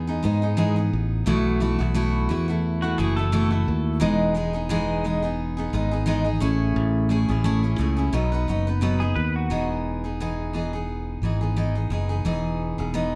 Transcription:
Already playing: E2
0.07 B3 D#4 G#4
0.23 G#2 G#3 B3 D#4 G#4
0.42 B3 D#4 G#4
0.57 E3 G#3 B3 D#4 G#4
0.76 B3 D#4 G#4
0.93 A1
1.26 B1 B2 E3 A3 E4 F#4
1.60 E3 A3 E4 F#4
1.79 B1 A3 E4 F#4
1.94 B2 E3 A3 E4 F#4
2.29 E2 E3 A3 E4 F#4
2.48 A3 E4 F#4
2.82 A3 E4 F#4
2.98 F#1 E3 A3 E4 F#4 G#4
3.16 A3 E4 F#4 A4
3.32 B2 E3 A3 E4 F#4
3.50 A3 E4 F#4
3.68 D#2
4.00 E1 E3 G#3 B3 D#4 G#4
4.35 G#3 B3 D#4 G#4
4.53 B3 D#4 G#4
4.69 E3 G#3 B3 D#4 G#4
5.04 G#3 B3 D#4 G#4
5.22 B3 D#4 G#4
5.57 B3 D#4 G#4
5.73 G#1 G#3 B3 D#4 G#4
5.91 B3 D#4 G#4
6.06 E3 G#3 B3 D#4 G#4
6.25 B3 D#4 G#4
6.40 A1 A3 C#4 E4 G#4
6.76 A1
7.09 A3 C#4 E4 G#4
7.29 A1 C#4 E4 G#4
7.44 A3 C#4 E4 G#4
7.63 C#4 E4 G#4
7.78 C#2 A3 C#4 E4 G#4
7.97 C#4 E4 G#4
8.13 B1 B2 F#3 B3 D#4 B4
8.32 B3 D#4 B4
8.48 F#1 F#3 B3 D#4 B4
8.67 B3 D#4 B4
8.81 B2 F#3 B3 D#4 B4
9.00 B3 D#4 G#4 B4
9.16 D#2 B4
9.36 F#4
9.50 E1 E3 B3 D#4 G#4
10.04 B3 D#4 G#4
10.20 E3 B3 D#4 G#4
10.53 E3 B3 D#4 G#4
10.73 B3 D#4 G#4
11.22 G#1 E3 B3 D#4 G#4
11.41 B3 D#4 G#4
11.56 E3 B3 D#4 G#4
11.75 B3 D#4 G#4
11.90 F#1 E3 B3 D#4 G#4
12.09 B3 D#4 G#4
12.25 E1 E3 B3 D#4 G#4
12.78 E1 B3 D#4 G#4
12.94 E3 B3 D#4 G#4

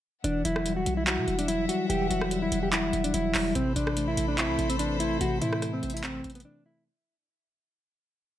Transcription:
0.24 E1 E3 D4 E5 F#5, closed hi-hat
0.45 E1 F#3 E4, closed hi-hat
0.56 cross-stick
0.66 G3, closed hi-hat
0.77 F#4
0.86 B1, closed hi-hat
0.97 E4
1.07 E4 F#4, clap, closed hi-hat
1.18 B2
1.28 E1, closed hi-hat
1.39 D4, closed hi-hat
1.48 F#3 E4, closed hi-hat
1.69 G3 F#4, closed hi-hat
1.90 E1 E3 G4, closed hi-hat
2.10 E1 F#3 F#4, closed hi-hat
2.21 cross-stick
2.31 G3, closed hi-hat
2.42 E4
2.52 E1, closed hi-hat
2.63 G4
2.72 E4, clap, closed hi-hat
2.93 E1, closed hi-hat
3.04 D4, closed hi-hat
3.14 E1 F#3 E4, closed hi-hat
3.34 E1 G3, clap, open hi-hat
3.55 A1 C3 C4 A4 C5 B5, closed hi-hat
3.76 A1 E3 D4, closed hi-hat
3.87 cross-stick
3.97 A3, closed hi-hat
4.08 E4
4.17 A1, closed hi-hat
4.28 D4
4.38 C4 E4, clap, closed hi-hat
4.49 C2
4.59 A1, closed hi-hat
4.70 C4, closed hi-hat
4.79 E3 D4, closed hi-hat
5.00 A3 E4, closed hi-hat
5.21 A1 C3 F#4, closed hi-hat
5.41 A2 E3 E4, closed hi-hat
5.53 cross-stick
5.62 A3, cross-stick, closed hi-hat
5.73 C4
5.83 A1, closed hi-hat
5.90 closed hi-hat
5.94 E4, closed hi-hat
6.04 C4, clap, closed hi-hat
6.24 A1, closed hi-hat
6.30 closed hi-hat
6.35 B3, closed hi-hat
6.40 closed hi-hat
6.45 E3 D4
6.66 A3 E4

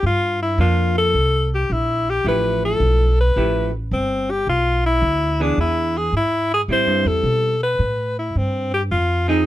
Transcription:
0.03 G2 F4
0.42 E4
0.58 F2 F3 A#3 D4 F4
0.98 A4
1.14 C2
1.55 G4
1.70 A#1 E4
2.10 G4
2.24 A1 F3 A3 E4 G4 B4
2.65 A4
2.80 B1
3.21 B4
3.36 A1 F3 A3 E4 G4
3.91 G1 C4
4.31 G4
4.47 B1 F4
4.86 E4
5.02 D2
5.40 E3 B3 D4 G#4
5.57 E2 E4
5.98 G#4
6.13 G#2
6.17 E4
6.54 G#4
6.68 A2 G3 C4 E4
6.72 C5
6.87 G2
7.05 E2 A4
7.23 B2
7.63 B4
7.79 A2
8.19 E4
8.35 G2 C4
8.74 G4
8.91 F2 F4
9.28 F3 C4 D#4 G#4

